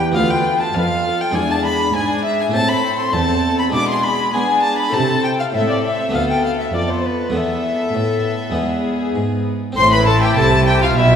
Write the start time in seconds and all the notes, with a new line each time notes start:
Already playing: B3 G4 B4
0.12 B3 F4 B4 F5
0.16 D2 F4 B4 F5
0.30 G5
0.61 A5
0.74 F2 F4 B4 F5
1.06 A4
1.21 G5
1.31 G#3 E4 D5
1.35 E2 D4 G#4 G#5
1.51 A5
1.65 B5
1.94 G#2 D4 G#4 G#5
2.24 E5
2.41 G#5
2.50 A3 E4 C5 A5
2.54 A2 C4 A4 A5
2.69 B5
2.99 C6
3.13 E2 C4 A4 A5
3.59 B5
3.69 G#3 E4 D5
3.73 B2 D4 G#4 D6
3.89 C6
4.03 B5
4.33 B3 D4 G#4 G#5
4.62 A5
4.78 B5
4.89 A3 E4 C5
4.93 C3 C4 A4 A5
5.24 G5
5.39 F5
5.52 A2 C4 A4 E5
5.69 D5
5.84 E5
6.09 A3 B3 B4
6.13 D2 B3 A4 F5
6.30 G5
6.44 F5
6.58 E5
6.73 F2 B3 A4 D5
6.89 C5
7.05 B4
7.30 A3 B3 B4
7.34 E2 B3 A4 E5
7.95 A2
8.51 E2 G#3 B3 B4
8.55 E2 B3 G#4
9.15 G#2
9.72 A1 C4 A4
9.77 A2 E4 C5 C6
9.92 B4 B5
10.06 A4 A5
10.22 G4 G5
10.36 C2 C3 A4 A5
10.67 G4 G5
10.83 F4 F5
10.96 B1 B2 E4 E5